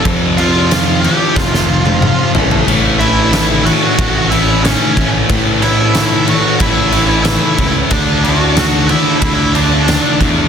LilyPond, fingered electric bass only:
\new Staff \with { instrumentName = "Fingered electric bass" } { \clef bass \time 4/4 \key d \lydian \tempo 4 = 92 f,2 f,,4. a,,8 | a,,2 a,,4. a,,8 | a,2 a,,4. cis,8 | d,2 d,4. e,8 | }